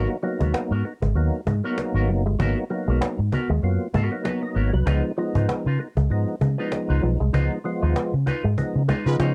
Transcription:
Already playing: F#3 A#3 B3 D#4
0.10 muted clean electric guitar stroke, cajon slap
0.23 F#3 A#3 B3 D#4, muted clean electric guitar stroke, cajon slap
0.40 D#2 G#3 B3 F#4 A#4, cajon bass
0.54 B3, muted fingered electric bass stroke, cajon slap
0.71 G#2 B3 F#4 A#4, cajon slap
0.84 B3 D#4, muted clean electric guitar stroke, cajon slap
1.02 G#1 G#3, muted clean electric guitar stroke, cajon bass
1.15 D#2 F#3 A#3 B3 D#4, muted clean electric guitar stroke, cajon slap
1.33 muted clean electric guitar stroke, cajon slap
1.47 G#2 G#3 B3 D#4, cajon bass
1.64 F#3 A#3 B3 D#4 F#4 A#4, cajon slap
1.77 muted clean electric guitar stroke, cajon slap
1.94 G#1 B3 F#4 A#4, cajon slap
2.09 F#1 F#3, muted clean electric guitar stroke, cajon slap
2.26 G1 G#3, muted clean electric guitar stroke, cajon slap
2.39 G#1 F#3 A#3 B3 D#4 F#4 A#4, cajon bass
2.57 muted clean electric guitar stroke, cajon slap
2.70 F#3 A#3 B3 D#4, muted clean electric guitar stroke, cajon slap
2.88 B1 G#3 B3 F#4 A#4, cajon slap
3.01 B3, muted fingered electric bass stroke, cajon slap
3.19 G#2, muted clean electric guitar stroke, cajon slap
3.32 B3 D#4 F#4 A#4, muted clean electric guitar stroke, cajon bass
3.50 D#2 G#3, muted clean electric guitar stroke, cajon slap
3.62 F#2 F#3 A#3 B3 F4, cajon slap
3.80 muted clean electric guitar stroke, cajon slap
3.94 G#2 G#3 B3 D#4 F#4 A#4, cajon bass
4.11 F#3 A#3 B3 D#4, muted clean electric guitar stroke, cajon slap
4.24 F#3 B3 F#4 B4, cajon slap
4.41 D#5, muted clean electric guitar stroke, cajon slap
4.55 G#1 B3 F#4 A#4 C#5, cajon slap
4.73 C2 F#3 B4, muted clean electric guitar stroke, cajon slap
4.86 C#2 F3 G#3 B3 D#4 F4 B4, cajon bass
5.03 muted clean electric guitar stroke, cajon slap
5.17 F3 G#3 B3 D#4, muted clean electric guitar stroke, cajon slap
5.35 G#2 G#3 D#4 F4 B4, cajon bass
5.49 B3, muted fingered electric bass stroke, cajon slap
5.66 C#3 D#4 F4 B4, cajon slap
5.79 B3 D#4, muted clean electric guitar stroke, cajon slap
5.97 C#2 G#3, muted clean electric guitar stroke, cajon bass
6.10 G#2 F3 G#3 B3 D#4, muted clean electric guitar stroke, cajon slap
6.27 muted clean electric guitar stroke, cajon slap
6.41 C#3 G#3 B3 D#4, cajon bass
6.58 F3 G#3 B3 D4 D#4 F4 B4, cajon slap
6.67 D#4
6.72 muted clean electric guitar stroke, cajon slap
6.89 C#2 D#4 F4 B4, cajon slap
7.03 B1 F3, muted clean electric guitar stroke, cajon slap
7.20 C2 G#3, muted clean electric guitar stroke, cajon slap
7.33 C#2 F3 G#3 B3 D#4 F4 B4, cajon bass
7.51 muted clean electric guitar stroke, cajon slap
7.64 F3 G#3 B3 F4, muted clean electric guitar stroke, cajon slap
7.81 D#2 G#3 D#4 F4 B4, cajon slap
7.96 B3, muted fingered electric bass stroke, cajon slap
8.13 C#3, muted clean electric guitar stroke, cajon slap
8.26 B3 D#4 F4 B4, muted clean electric guitar stroke, cajon bass
8.44 G#2 G#3, muted clean electric guitar stroke, cajon slap
8.57 F3 G#3 B3 D#4, cajon bass
8.74 C#3, muted clean electric guitar stroke, cajon slap
8.88 G#3 B3 C#4 D#4 F4 B4, cajon bass, cajon slap
9.05 C#3 F3 G#3 B3 D#4 F4 B4, muted clean electric guitar stroke
9.19 C#3 F3 D#4 F4 C#5, cajon slap

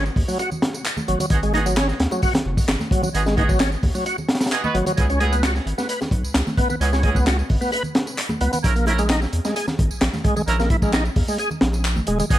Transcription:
Already playing: G#1
0.06 tambourine
0.16 D#2, kick, open hi-hat, high bongo
0.28 F#3, tambourine, high conga
0.39 F#4, closed hi-hat, tambourine, high bongo
0.51 tambourine, low conga
0.62 snare, closed hi-hat
0.74 tambourine, high bongo
0.85 clap, closed hi-hat, tambourine
0.97 tambourine, high bongo, high conga, low conga
1.08 G#1 F#3, closed hi-hat
1.20 F#3, closed hi-hat, tambourine, low conga
1.30 G#1 G#3 B3 D#4 F#4 G#4, kick, closed hi-hat, tambourine, high bongo
1.43 G#3, closed hi-hat, tambourine
1.54 G#3 B3 D#4 F#4 G#4, closed hi-hat, high bongo, high conga
1.66 F#3, closed hi-hat, tambourine
1.76 C#4, snare, clap, closed hi-hat, tambourine
1.88 snare, tambourine, high bongo
2.00 D#2, snare, closed hi-hat
2.11 F#3, tambourine, high bongo, high conga
2.22 F#4, kick, open hi-hat, tambourine
2.34 snare, closed hi-hat, tambourine, low conga
2.45 F#1, high bongo
2.57 G#1, kick, open hi-hat, tambourine
2.68 G#1, snare, clap, closed hi-hat, tambourine, high bongo
2.79 snare, tambourine, high conga, low conga
2.91 F#3, kick, closed hi-hat
3.03 F#3, tambourine, high bongo, low conga
3.14 G#1 G#3 B3 D#4 F#4 G#4, closed hi-hat, tambourine
3.26 G#3, snare, tambourine, high bongo
3.37 G#3 B3 D#4 F#4 G#4, kick, closed hi-hat, high conga
3.49 F#3, kick, tambourine
3.60 C#4, snare, clap, closed hi-hat, tambourine, high bongo
3.72 tambourine
3.83 D#2, kick, open hi-hat, high bongo
3.95 F#3, tambourine, high conga
4.06 F#4, closed hi-hat, tambourine
4.18 tambourine, high bongo, low conga
4.28 snare, closed hi-hat
4.35 snare, closed hi-hat
4.40 snare, closed hi-hat, tambourine, high bongo
4.46 snare, closed hi-hat
4.51 G#3 B3 D#4 F#4 G#4, clap, closed hi-hat, tambourine
4.63 B3 D#4 F#4 B4, tambourine, high conga, low conga
4.74 G#1 F#3, closed hi-hat, high bongo
4.86 F#3, closed hi-hat, tambourine, low conga
4.97 C#2 G#3 B3 C#4 E4 G#4, kick, closed hi-hat, tambourine
5.10 C#4, closed hi-hat, tambourine
5.20 G#3 B3 C#4 E4 G#4, closed hi-hat, high bongo, high conga
5.32 B3, closed hi-hat, tambourine
5.43 F#4, snare, clap, closed hi-hat, tambourine, high bongo
5.55 snare, tambourine
5.66 G#1, closed hi-hat
5.78 B3, snare, tambourine, high bongo, high conga
5.89 B4, closed hi-hat, tambourine
6.01 snare, tambourine, high bongo, low conga
6.11 B1, kick, closed hi-hat
6.24 C#2, tambourine
6.34 C#2, snare, clap, closed hi-hat, tambourine, high bongo
6.47 snare, tambourine, high conga, low conga
6.57 B3, kick, closed hi-hat, high bongo
6.69 B3, tambourine, low conga
6.80 C#2 G#3 B3 C#4 E4 G#4, closed hi-hat, tambourine
6.93 C#4, snare, tambourine, high bongo
7.03 G#3 B3 C#4 E4 G#4, kick, closed hi-hat, high conga
7.15 B3, kick, tambourine, high bongo
7.26 F#4, snare, clap, closed hi-hat, tambourine
7.39 tambourine
7.49 G#1, kick, open hi-hat, high bongo
7.61 B3, tambourine, high conga
7.72 B4, closed hi-hat, tambourine, high bongo
7.83 tambourine, low conga
7.95 snare, closed hi-hat
8.07 tambourine, high bongo
8.18 clap, closed hi-hat, tambourine
8.29 tambourine, high bongo, high conga, low conga
8.41 C#2 B3, closed hi-hat
8.53 B3, closed hi-hat, tambourine, low conga
8.63 A#1 A#3 C#4 E4 A#4, kick, closed hi-hat, tambourine, high bongo
8.76 A#3, closed hi-hat, tambourine
8.86 A#3 C#4 E4 A#4, closed hi-hat, high bongo, high conga
8.98 G#3, closed hi-hat, tambourine
9.10 D#4, snare, clap, closed hi-hat, tambourine
9.22 snare, tambourine, high bongo
9.33 E2, closed hi-hat
9.45 G#3, snare, tambourine, high bongo, high conga
9.56 G#4, closed hi-hat, tambourine
9.68 snare, tambourine, low conga
9.78 G#1, kick, closed hi-hat, high bongo
9.91 A#1, tambourine
10.01 A#1, snare, clap, closed hi-hat, tambourine, high bongo
10.13 snare, tambourine, high conga, low conga
10.24 G#3, kick, closed hi-hat
10.36 G#3, tambourine, high bongo, low conga
10.47 A#1 A#3 C#4 E4 A#4, closed hi-hat, tambourine
10.59 A#3, snare, tambourine, high bongo
10.70 E4, kick, closed hi-hat, high conga
10.82 G#3, kick, tambourine
10.93 D#4, snare, clap, closed hi-hat, tambourine, high bongo
11.05 tambourine
11.16 E2, kick, open hi-hat, high bongo
11.28 G#3, tambourine, high conga
11.38 G#4, closed hi-hat, tambourine
11.51 tambourine, high bongo, low conga
11.61 A#1, snare, closed hi-hat
11.73 tambourine, high bongo
11.85 clap, tambourine
11.96 tambourine, high conga, low conga
12.07 E1 G#3, closed hi-hat, high bongo
12.19 G#3, closed hi-hat, tambourine, low conga
12.30 G#1 G#3 B3 D#4 F#4 G#4, kick, closed hi-hat, tambourine

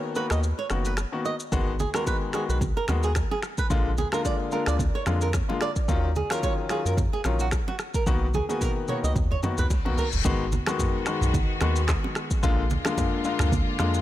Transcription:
Already playing: D#3 A#3 B3 F#4
0.15 D#3 A#3 B3 F#4 B4, shaker
0.30 D#2 D#5, finger snap, cross-stick, shaker
0.43 shaker
0.59 C#5
0.70 F#1 D#3 A#3 B3 F#4, finger snap, cross-stick, shaker
0.85 B4, shaker
0.97 finger snap, cross-stick, shaker
1.12 D#3 A#3 B3 F#4
1.25 D#5, shaker
1.40 shaker
1.52 G#1 D#3 G#3 B3 F#4, kick, low conga, shaker
1.79 G#4, low conga, shaker
1.94 D#3 G#3 B3 F#4 A#4, finger snap, cross-stick, high bongo, shaker
2.07 B4, kick, high bongo, low bongo, shaker
2.33 D#3 G#3 B3 F#4 G#4, finger snap, cross-stick, shaker
2.49 B1 B4, shaker
2.61 kick, low conga, shaker
2.77 A#4
2.88 D#2 D#3 G#3 B3 F#4, finger snap, cross-stick, high bongo, low bongo, shaker
3.03 G#4, shaker
3.15 finger snap, kick, cross-stick, high bongo, shaker
3.31 G#4, low bongo
3.42 finger snap, cross-stick, shaker
3.58 B4, kick, shaker
3.70 A#1 D3 G#3 A#3 F4, kick, low conga, shaker
3.97 G#4, low conga, shaker
4.12 D3 G#3 A#3 F4 A#4, finger snap, cross-stick, high bongo, shaker
4.25 D5, kick, high bongo, low bongo, shaker
4.51 D3 G#3 A#3 F4 A#4, shaker
4.66 D2 D5, finger snap, cross-stick, shaker
4.79 kick, low conga, shaker
4.95 C#5
5.06 F2 D3 G#3 A#3 F4, finger snap, cross-stick, high bongo, low bongo, shaker
5.21 A#4, shaker
5.33 finger snap, kick, cross-stick, high bongo, shaker
5.49 D3 G#3 A#3 F4, low bongo
5.61 D5, finger snap, cross-stick, shaker
5.76 kick, shaker
5.88 D#2 D#3 F#3 C#4 F4, kick, low conga, shaker
6.16 G#4, low conga, shaker
6.30 D#3 F#3 C#4 F4 A#4, finger snap, cross-stick, high bongo, shaker
6.43 C#5, kick, high bongo, low bongo, shaker
6.69 D#3 F#3 C#4 F4 G#4, finger snap, cross-stick, shaker
6.85 F#2 A#4, shaker
6.97 kick, low conga, shaker
7.13 G#4
7.24 A#1 D#3 F#3 C#4 F4, finger snap, cross-stick, high bongo, low bongo, shaker
7.39 F#4, shaker
7.51 finger snap, kick, cross-stick, high bongo, shaker
7.68 F#4, low bongo
7.79 finger snap, cross-stick, shaker
7.94 A#4, kick, shaker
8.06 B1 D#3 A#3 B3 F#4, kick, high tom, low conga, shaker
8.34 G#4, high tom, low conga, shaker
8.49 D#3 A#3 B3 F#4 G#4, high bongo, shaker
8.61 A#4, kick, mid tom, high bongo, low bongo, shaker
8.88 D#3 A#3 B3 F#4 C#5, mid tom, shaker
9.04 C#2 D#5, shaker
9.16 D#2, kick, mid tom, reverse cymbal, low conga, shaker
9.31 C#5, mid tom
9.43 D#3 A#3 B3 F#4, mid tom, high bongo, low bongo, shaker
9.58 C#2 B4, mid tom, shaker
9.70 kick, floor tom, high bongo, shaker
9.85 B1 D#3 A#3 B3 F#4, floor tom, low bongo
9.98 A#4, floor tom, shaker
10.12 F#1, floor tom, shaker
10.25 G#1 D#3 G#3 B3 F#4, kick, low conga, shaker
10.52 low conga, shaker
10.66 D#3 G#3 B3 F#4, finger snap, cross-stick, high bongo, low bongo, shaker
10.79 kick, mid tom, high bongo, shaker
11.06 D#3 G#3 B3 F#4, finger snap, cross-stick, shaker
11.21 B1, mid tom, shaker
11.34 kick, low conga, shaker
11.61 D#2 D#3 G#3 B3 F#4, finger snap, cross-stick, high bongo, low bongo, shaker
11.76 shaker
11.88 finger snap, kick, cross-stick, clap, high bongo, shaker
12.04 low bongo
12.15 finger snap, cross-stick, shaker
12.31 kick, shaker
12.43 A#1 D3 G#3 A#3 F4, kick, low conga, shaker
12.70 low conga, shaker
12.85 D3 G#3 A#3 F4, finger snap, cross-stick, high bongo, low bongo, shaker
12.98 kick, mid tom, high bongo, shaker
13.24 D3 G#3 A#3 F4, shaker
13.39 D2, finger snap, cross-stick, mid tom, shaker
13.52 kick, low conga, shaker
13.79 F2 D3 G#3 A#3 F4, finger snap, cross-stick, high bongo, low bongo, shaker
13.94 shaker

